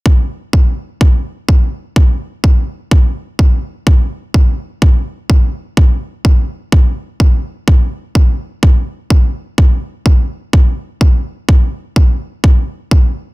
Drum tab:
BD |o-o-o-o-|o-o-o-o-|o-o-o-o-|o-o-o-o-|

BD |o-o-o-o-|o-o-o-o-|o-o-o-o-|